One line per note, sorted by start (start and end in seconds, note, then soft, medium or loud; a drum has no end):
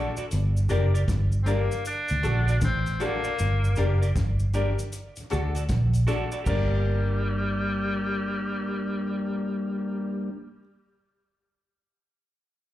0.00 0.12 D4 medium
0.00 0.12 F#4 medium
0.00 0.13 A4 medium
0.17 0.22 D2 medium
0.17 0.22 A2 medium
0.17 0.25 F#4 medium
0.17 0.24 A4 medium
0.17 0.24 D5 medium
0.17 cabasa medium
0.31 0.67 G1 loud
0.31 closed hi-hat loud
0.31 cabasa medium
0.55 0.61 G2 medium
0.55 0.60 D3 medium
0.55 cabasa medium
0.69 1.05 F#1 medium
0.69 0.78 G3 medium
0.69 0.78 A#3 medium
0.69 0.78 D4 medium
0.69 0.89 D4 loud
0.69 0.89 G4 medium
0.69 0.85 G4 medium
0.69 0.90 A#4 loud
0.69 0.85 A#4 medium
0.69 0.86 D5 loud
0.69 closed hi-hat medium
0.69 cabasa medium
0.94 1.02 G4 medium
0.94 1.01 A#4 medium
0.94 1.01 D5 medium
0.94 closed hi-hat medium
0.94 cabasa medium
1.08 1.67 G1 loud
1.08 kick loud
1.08 snare loud
1.08 closed hi-hat loud
1.08 cabasa medium
1.32 1.37 G2 medium
1.32 1.37 D3 medium
1.32 cabasa medium
1.43 1.55 G3 medium
1.43 1.55 A#3 medium
1.43 1.51 C4 medium
1.43 1.66 D4 medium
1.43 1.55 D4 medium
1.43 1.62 G4 medium
1.43 1.66 G4 medium
1.43 1.62 A#4 medium
1.43 1.66 A#4 loud
1.43 closed hi-hat medium
1.43 cabasa medium
1.47 1.86 A#3 medium
1.47 1.62 D5 medium
1.71 1.76 G2 medium
1.71 1.76 D3 medium
1.71 closed hi-hat medium
1.71 cabasa medium
1.85 2.59 D4 loud
1.85 closed hi-hat loud
1.85 cabasa medium
2.08 2.15 D2 medium
2.08 2.23 D2 medium
2.08 2.14 A2 medium
2.08 closed hi-hat medium
2.08 cabasa medium
2.23 2.59 A#1 medium
2.23 2.32 F#3 medium
2.23 2.32 A3 medium
2.23 2.43 D4 medium
2.23 2.32 D4 medium
2.23 2.39 F#4 medium
2.23 2.43 F#4 medium
2.23 2.39 A4 medium
2.23 2.43 A4 loud
2.23 2.39 D5 medium
2.23 closed hi-hat medium
2.23 cabasa medium
2.48 2.53 D2 medium
2.48 2.53 A2 medium
2.48 2.55 F#4 soft
2.48 2.55 A4 medium
2.48 2.55 D5 medium
2.48 closed hi-hat medium
2.48 cabasa medium
2.61 2.97 A1 loud
2.61 3.05 C4 loud
2.61 kick loud
2.61 snare loud
2.61 closed hi-hat medium
2.61 cabasa medium
2.86 2.91 D2 medium
2.86 2.91 A2 medium
2.86 closed hi-hat medium
2.86 cabasa soft
3.00 3.09 F#3 medium
3.00 3.09 A3 medium
3.00 4.17 A#3 loud
3.00 3.20 D4 medium
3.00 3.09 D4 medium
3.00 3.15 F#4 medium
3.00 3.20 F#4 medium
3.00 3.16 A4 medium
3.00 3.20 A4 loud
3.00 3.16 D5 loud
3.00 closed hi-hat medium
3.00 cabasa medium
3.24 3.30 D2 medium
3.24 3.30 A2 medium
3.24 3.32 F#4 medium
3.24 3.32 A4 medium
3.24 3.32 D5 medium
3.24 cabasa medium
3.39 3.75 G1 loud
3.39 closed hi-hat medium
3.39 cabasa medium
3.63 3.68 G2 medium
3.63 3.68 D3 medium
3.63 cabasa medium
3.76 4.13 F#1 medium
3.76 3.86 G3 medium
3.76 3.86 A#3 medium
3.76 3.97 D4 medium
3.76 3.86 D4 medium
3.76 3.92 G4 medium
3.76 3.97 G4 loud
3.76 3.93 A#4 medium
3.76 3.97 A#4 loud
3.76 3.93 D5 medium
3.76 closed hi-hat medium
3.76 cabasa medium
4.02 4.09 G4 medium
4.02 4.09 A#4 medium
4.02 4.09 D5 medium
4.02 closed hi-hat medium
4.02 cabasa medium
4.16 4.75 G1 medium
4.16 kick loud
4.16 snare loud
4.16 closed hi-hat medium
4.16 cabasa medium
4.40 4.45 G2 medium
4.40 4.45 D3 medium
4.40 cabasa medium
4.54 4.63 G3 medium
4.54 4.63 A#3 medium
4.54 4.63 D4 medium
4.54 4.74 D4 medium
4.54 4.69 G4 medium
4.54 4.74 G4 medium
4.54 4.70 A#4 medium
4.54 4.74 A#4 loud
4.54 4.70 D5 medium
4.54 closed hi-hat medium
4.54 cabasa medium
4.79 4.84 G2 medium
4.79 4.84 D3 medium
4.79 closed hi-hat medium
4.79 cabasa medium
4.93 closed hi-hat medium
4.93 cabasa medium
5.16 5.22 D2 medium
5.16 5.22 A2 medium
5.16 closed hi-hat medium
5.16 cabasa medium
5.30 5.67 D2 medium
5.30 5.40 F#3 medium
5.30 5.40 A3 medium
5.30 5.50 D4 loud
5.30 5.40 D4 medium
5.30 5.46 F#4 medium
5.30 5.51 F#4 medium
5.30 5.51 A4 loud
5.30 5.47 A4 medium
5.30 5.47 D5 medium
5.30 closed hi-hat medium
5.30 cabasa medium
5.55 5.61 D2 medium
5.55 5.61 A2 medium
5.55 5.63 F#4 soft
5.55 5.62 A4 medium
5.55 5.62 D5 medium
5.55 closed hi-hat medium
5.55 cabasa medium
5.69 6.05 A#1 loud
5.69 kick loud
5.69 snare loud
5.69 closed hi-hat medium
5.69 cabasa medium
5.93 5.99 D2 medium
5.93 5.99 A2 medium
5.93 closed hi-hat medium
5.93 cabasa medium
6.07 6.17 F#3 medium
6.07 6.17 A3 medium
6.07 6.27 D4 medium
6.07 6.17 D4 medium
6.07 6.23 F#4 medium
6.07 6.27 F#4 medium
6.07 6.23 A4 medium
6.07 6.28 A4 medium
6.07 6.23 D5 loud
6.07 closed hi-hat medium
6.07 cabasa medium
6.32 6.40 F#4 medium
6.32 6.39 A4 medium
6.32 6.39 D5 medium
6.32 cabasa medium
6.44 10.60 G1 medium
6.44 10.30 G3 medium
6.44 10.30 A#3 medium
6.44 10.59 D4 medium
6.44 10.30 D4 loud
6.44 10.61 G4 medium
6.44 10.59 G4 medium
6.44 10.60 A#4 medium
6.44 10.64 A#4 loud
6.44 kick loud
6.44 crash medium
6.44 cabasa medium
6.49 10.31 G3 medium
6.49 10.66 D5 loud